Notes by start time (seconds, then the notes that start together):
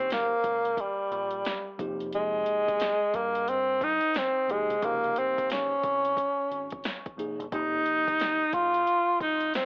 Already playing: C#3 F3 A#3 D#4 G4
0.11 A#3, snare, closed hi-hat
0.44 C#2, kick, closed hi-hat
0.65 closed hi-hat
0.77 G3, kick, closed hi-hat
1.12 A#1, closed hi-hat
1.31 closed hi-hat
1.45 snare, closed hi-hat
1.78 F2 C3 F3 A#3 D#4 G4, kick, closed hi-hat
2.00 closed hi-hat
2.13 G#3, closed hi-hat
2.46 closed hi-hat
2.68 kick, closed hi-hat
2.80 snare, closed hi-hat
3.14 G2 A#3, kick, closed hi-hat
3.35 closed hi-hat
3.48 C4, closed hi-hat
3.81 D#4, kick, closed hi-hat
4.01 closed hi-hat
4.15 C4, snare, closed hi-hat
4.48 C3 F3 G#3 A#3 D#4 G4, closed hi-hat
4.70 C2, closed hi-hat
4.82 C#2 C3 F3 A#3 D#4 G4, kick, closed hi-hat
5.04 closed hi-hat
5.16 C4, closed hi-hat
5.38 kick, closed hi-hat
5.50 C#4, snare, closed hi-hat
5.83 C2, kick, closed hi-hat
6.05 closed hi-hat
6.17 kick, closed hi-hat
6.51 G#1, closed hi-hat
6.71 kick, closed hi-hat
6.84 snare, closed hi-hat
7.06 kick, closed hi-hat
7.17 C3 F3 A#3 D#4 G#4, closed hi-hat
7.39 G1, closed hi-hat
7.51 F1 C3 F3 A#3 D#4 G4, kick, closed hi-hat
7.86 closed hi-hat
8.08 kick, closed hi-hat
8.20 snare, closed hi-hat
8.53 G#1 F4, kick, closed hi-hat
8.74 closed hi-hat
8.87 closed hi-hat
9.20 F1 D#4, kick, closed hi-hat
9.40 closed hi-hat
9.54 C4, snare, closed hi-hat